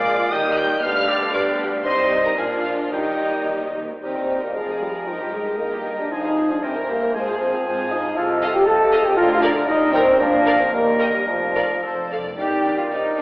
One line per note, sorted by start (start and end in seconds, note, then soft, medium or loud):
0.00 0.28 A#1 medium
0.00 0.28 A#2 medium
0.00 0.28 G#3 medium
0.00 0.31 G#3 medium
0.00 0.34 G#3 medium
0.00 0.28 F4 medium
0.00 0.31 F4 medium
0.00 0.28 A#4 medium
0.00 0.32 D5 medium
0.00 0.28 F5 medium
0.00 0.33 F5 medium
0.00 0.31 D6 loud
0.31 0.81 D#2 medium
0.31 0.81 D#3 medium
0.31 2.38 G3 medium
0.31 0.82 G3 medium
0.31 0.82 A#3 medium
0.31 0.82 D#4 medium
0.31 0.81 G4 medium
0.31 0.84 A#4 medium
0.31 0.83 D#5 medium
0.31 0.40 D#5 medium
0.31 0.83 G5 medium
0.31 0.57 D#6 loud
0.57 0.65 G5 medium
0.57 0.82 G6 loud
0.82 1.83 D2 medium
0.82 1.83 D3 medium
0.82 1.33 G3 medium
0.82 1.32 B3 medium
0.82 1.83 D4 medium
0.82 1.32 G4 medium
0.82 1.33 B4 medium
0.82 1.32 D5 medium
0.82 1.10 F5 medium
0.82 1.33 F5 medium
0.82 1.32 F6 loud
1.08 1.34 D5 medium
1.33 1.85 G3 medium
1.33 1.84 B3 medium
1.33 1.84 G4 medium
1.33 1.70 B4 medium
1.33 1.84 D5 medium
1.33 1.59 D5 medium
1.33 1.87 F5 medium
1.33 1.41 D6 medium
1.84 2.34 C2 medium
1.84 2.35 C3 medium
1.84 2.34 G3 medium
1.84 2.34 C4 medium
1.84 2.34 D#4 medium
1.84 2.38 D#4 medium
1.84 2.22 C5 medium
1.84 2.34 C5 medium
1.84 2.40 D#5 medium
1.84 2.35 D#5 medium
1.84 2.22 C6 loud
2.25 2.30 A#4 medium
2.25 2.30 A#5 medium
2.37 2.93 A#1 medium
2.37 2.93 A#2 medium
2.37 2.92 F3 medium
2.37 2.91 D4 medium
2.37 2.93 D4 medium
2.37 2.93 F4 medium
2.37 2.64 G#4 medium
2.37 2.92 A#4 medium
2.37 2.93 D5 medium
2.37 2.73 F5 medium
2.37 2.45 G#5 medium
2.64 2.93 F4 medium
2.64 2.72 F5 medium
2.92 3.81 D#2 medium
2.92 3.00 D#3 soft
2.92 3.81 D#3 medium
2.92 3.76 G3 medium
2.92 3.75 G3 medium
2.92 3.76 D#4 medium
2.92 3.82 D#4 medium
2.92 3.76 D#4 medium
2.92 3.83 G4 medium
2.92 3.74 A#4 medium
2.92 3.74 D#5 medium
2.92 3.77 D#5 medium
2.92 3.73 G5 medium
3.01 3.08 D#3 soft
3.10 3.16 D#3 soft
3.18 3.24 D#3 soft
3.26 3.33 D#3 soft
3.34 3.40 D#3 soft
3.41 3.49 D#3 medium
3.50 3.56 D#3 medium
3.57 3.64 D#3 medium
3.65 3.72 D#3 medium
3.73 3.80 D#3 medium
3.81 3.87 D#3 medium
3.88 3.96 D#3 medium
4.03 4.49 D#2 medium
4.03 4.50 D#2 medium
4.03 4.57 G3 medium
4.03 4.40 C4 medium
4.03 4.15 D#4 medium
4.03 4.16 G4 medium
4.03 6.13 A#4 medium
4.03 4.40 C5 medium
4.03 4.16 D#5 medium
4.03 4.52 D#5 medium
4.16 4.30 D#4 soft
4.16 4.29 G4 soft
4.16 4.29 A#4 soft
4.29 4.43 D#4 soft
4.29 4.43 G4 soft
4.29 4.42 D#5 soft
4.41 4.56 A#3 medium
4.41 4.56 D#4 soft
4.41 4.56 G4 soft
4.41 4.55 A#4 soft
4.41 4.54 A#4 soft
4.55 5.01 F1 medium
4.55 5.01 F2 medium
4.55 5.08 F3 soft
4.55 4.81 G#3 medium
4.55 4.67 F4 soft
4.55 4.81 G#4 medium
4.55 4.68 A#4 soft
4.55 5.07 D5 medium
4.55 4.67 F5 soft
4.67 4.81 G#4 soft
4.67 4.82 G#4 soft
4.67 4.81 D5 soft
4.80 4.93 G3 medium
4.80 4.94 F4 soft
4.80 5.09 G4 medium
4.80 4.95 A#4 soft
4.80 4.94 F5 soft
4.93 5.07 G#4 soft
4.93 5.08 G#4 soft
4.93 5.07 D5 soft
5.05 5.53 G1 medium
5.05 5.53 G2 medium
5.05 6.11 D#3 medium
5.05 5.18 F3 medium
5.05 5.19 D#4 medium
5.05 5.36 F4 medium
5.05 5.20 A#4 soft
5.05 6.11 D#5 medium
5.05 5.18 G5 medium
5.19 5.33 G4 soft
5.19 5.34 G4 soft
5.19 5.33 D#5 soft
5.31 5.58 G#3 medium
5.31 5.46 D#4 soft
5.31 5.62 G#4 medium
5.31 5.47 A#4 soft
5.31 5.45 G5 soft
5.45 5.59 G4 soft
5.45 5.60 G4 soft
5.45 5.59 D#5 soft
5.58 6.05 G1 medium
5.58 6.05 G2 medium
5.58 5.98 A#3 medium
5.58 5.72 D#4 medium
5.58 5.71 A#4 soft
5.58 5.99 A#4 medium
5.58 5.71 G5 medium
5.71 5.86 G4 soft
5.71 5.85 D#5 soft
5.84 5.99 D#4 medium
5.84 5.99 A#4 soft
5.84 5.98 G5 soft
5.97 6.11 D4 medium
5.97 6.12 G4 soft
5.97 6.13 D5 medium
5.97 6.11 D#5 soft
6.10 6.57 F1 medium
6.10 6.57 F2 medium
6.10 6.64 F3 medium
6.10 6.49 D#4 medium
6.10 6.24 F4 medium
6.10 6.64 G#4 medium
6.10 7.88 C5 medium
6.10 6.24 C5 medium
6.10 6.52 D#5 medium
6.10 6.23 G#5 medium
6.24 6.37 G#4 soft
6.24 6.38 G#4 medium
6.24 6.37 F5 medium
6.37 6.50 F4 soft
6.37 6.50 C5 soft
6.37 6.50 G#5 medium
6.50 6.63 D4 medium
6.50 6.63 G#4 soft
6.50 6.63 D5 medium
6.50 6.63 F5 soft
6.62 7.08 G1 medium
6.62 7.08 G2 medium
6.62 7.16 E3 medium
6.62 6.74 C4 medium
6.62 6.75 G4 soft
6.62 7.14 A#4 medium
6.62 6.75 C5 soft
6.62 6.90 C5 medium
6.62 6.75 G5 medium
6.76 6.89 A#4 soft
6.76 6.89 E5 soft
6.88 7.14 A#3 medium
6.88 7.02 G4 medium
6.88 7.14 A#4 medium
6.88 7.02 C5 soft
6.88 7.02 G5 soft
7.02 7.15 A#4 medium
7.02 7.15 E5 soft
7.14 7.60 G#1 medium
7.14 7.60 G#2 medium
7.14 8.16 F3 medium
7.14 7.40 G#3 medium
7.14 7.27 F4 medium
7.14 8.15 G#4 medium
7.14 7.42 G#4 medium
7.14 7.27 C5 medium
7.14 7.27 G#5 medium
7.27 7.40 G#4 medium
7.27 7.41 G#4 medium
7.27 7.40 F5 medium
7.39 7.64 C4 medium
7.39 7.53 F4 medium
7.39 7.53 C5 medium
7.39 7.66 C5 medium
7.39 7.53 G#5 medium
7.54 7.66 G#4 medium
7.54 7.67 G#4 medium
7.54 7.66 F5 medium
7.65 8.11 G#1 medium
7.65 8.11 G#2 medium
7.65 7.91 C4 medium
7.65 7.79 F4 medium
7.65 7.78 C5 medium
7.65 7.91 C5 medium
7.65 7.79 G#5 medium
7.79 7.92 G#4 medium
7.79 7.92 F5 medium
7.91 8.16 D#4 medium
7.91 8.05 F4 medium
7.91 8.05 C5 medium
7.91 8.17 D#5 medium
7.91 8.05 G#5 medium
8.05 8.17 G#4 medium
8.05 8.18 F5 medium
8.16 8.58 C2 medium
8.16 8.58 C3 medium
8.16 8.63 F3 medium
8.16 8.54 F4 medium
8.16 8.64 A4 medium
8.16 8.63 D#5 medium
8.16 8.55 F5 medium
8.42 8.54 A4 medium
8.42 8.54 D#5 medium
8.42 8.54 F5 medium
8.54 8.67 G4 loud
8.54 8.65 G5 medium
8.65 9.09 C2 medium
8.65 9.09 C3 medium
8.65 9.16 F3 medium
8.65 9.04 A4 loud
8.65 9.19 A4 medium
8.65 9.17 D#5 medium
8.65 9.07 A5 medium
8.92 9.04 A4 medium
8.92 9.04 D#5 medium
8.92 9.04 F5 medium
9.04 9.17 G4 loud
9.04 9.18 G5 medium
9.17 9.60 D2 loud
9.17 9.60 D3 medium
9.17 9.70 F3 medium
9.17 9.42 F4 loud
9.17 9.67 A#4 medium
9.17 9.68 D5 medium
9.17 9.42 F5 loud
9.41 9.53 D4 loud
9.41 9.55 A#4 medium
9.41 9.54 D5 medium
9.41 9.55 F5 medium
9.67 10.11 D#2 medium
9.67 10.11 D#3 medium
9.67 10.22 G3 medium
9.67 9.93 D#4 loud
9.67 10.19 A#4 medium
9.67 10.20 D#5 medium
9.67 9.96 D#5 loud
9.92 10.19 C4 loud
9.92 10.06 A#4 medium
9.92 10.22 C5 medium
9.92 10.06 G5 medium
10.19 10.64 A#1 loud
10.19 10.64 A#2 medium
10.19 10.69 A#2 loud
10.19 10.74 F3 medium
10.19 10.59 D4 loud
10.19 10.71 A#4 medium
10.19 10.61 D5 loud
10.19 10.71 F5 medium
10.46 10.58 A#4 medium
10.46 10.59 D5 medium
10.46 10.59 F5 medium
10.60 10.73 C4 medium
10.60 10.73 C5 medium
10.72 11.18 D#2 medium
10.72 11.27 G3 medium
10.72 11.13 A#3 loud
10.72 11.26 A#4 medium
10.72 11.13 A#4 medium
10.72 11.27 D#5 medium
10.99 11.13 A#4 medium
10.99 11.12 D#5 medium
10.99 11.13 G5 medium
11.13 11.27 G3 medium
11.13 11.20 G4 medium
11.27 11.74 F1 medium
11.27 11.74 F2 medium
11.27 11.82 F3 medium
11.27 11.83 F4 medium
11.27 11.84 A#4 medium
11.27 11.84 D5 medium
11.55 11.68 A#4 medium
11.55 11.69 D5 medium
11.55 11.69 F5 medium
11.82 12.29 F1 medium
11.82 11.90 F2 soft
11.82 12.29 F2 medium
11.82 12.10 F3 medium
11.82 12.11 A4 medium
11.82 11.90 C5 medium
11.82 12.10 C5 medium
11.91 11.98 F2 soft
11.99 12.06 F2 soft
12.08 12.14 F2 medium
12.08 12.24 A4 medium
12.12 12.37 D5 medium
12.12 12.24 F5 medium
12.16 12.22 F2 medium
12.23 12.31 F2 medium
12.37 12.46 A#1 medium
12.37 13.22 G3 medium
12.37 12.47 D4 medium
12.37 12.74 D#4 medium
12.37 12.75 G4 medium
12.37 13.22 A#4 medium
12.37 12.46 D5 medium
12.37 13.22 D5 medium
12.37 12.47 F5 medium
12.37 12.75 G5 medium
12.64 12.73 A#1 medium
12.64 12.73 D4 soft
12.64 12.72 D5 soft
12.64 12.72 F5 soft
12.77 12.83 D4 medium
12.77 12.90 F4 medium
12.77 12.90 F5 medium
12.90 12.99 A#1 medium
12.90 13.03 C4 medium
12.90 12.99 D4 soft
12.90 13.15 D#4 medium
12.90 12.99 D5 soft
12.90 13.16 D#5 medium
12.90 12.99 F5 soft
13.16 13.22 A#1 medium
13.16 13.22 A#3 medium
13.16 13.22 D4 medium
13.16 13.22 D4 soft
13.16 13.22 D5 medium
13.16 13.22 D5 soft
13.16 13.22 F5 soft